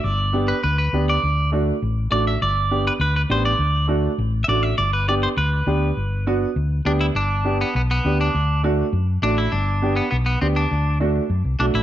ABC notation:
X:1
M:4/4
L:1/16
Q:1/4=202
K:G
V:1 name="Clean electric guitar"
d6 B2 B2 B4 d2- | d4 z8 d2 e2 | d6 B2 B2 B2 c2 d2- | d4 z6 z3/2 e/2 d2 e2 |
d2 B2 d2 c2 B8- | B12 D2 E2 | D6 B,2 B,2 B,4 D2- | D4 z8 D2 E2 |
D6 B,2 B,2 B,2 C2 D2- | D4 z8 D2 E2 |]
V:2 name="Upright piano"
z4 [B,DG]2 z6 [B,DG]2 z2 | z4 [A,DF]2 z6 [A,DF]2 z2 | z4 [B,DG]2 z6 [B,DG]2 z2 | z4 [A,DF]2 z6 [A,DF]2 z2 |
z4 [B,DG]2 z6 [B,DG]2 z2 | z4 [B,DF]2 z6 [B,DG]2 z2 | z4 [B,DG]2 z6 [B,DG]2 z2 | z4 [A,DF]2 z6 [A,DF]2 z2 |
z4 [B,DG]2 z6 [B,DG]2 z2 | z4 [A,DF]2 z6 [A,DF]2 z2 |]
V:3 name="Fingered electric bass" clef=bass
G,,,8 D,,4 D,,4 | D,,8 A,,,4 A,,,4 | G,,,8 D,,4 A,,,4 | D,,8 A,,,4 A,,,4 |
G,,,8 D,,4 D,,4 | G,,,8 D,,4 D,,4 | G,,,8 B,,,4 D,,4 | D,,8 F,,4 A,,,4 |
G,,,8 B,,,4 D,,4 | D,,8 F,,2 C,,2 B,,,2 A,,,2 |]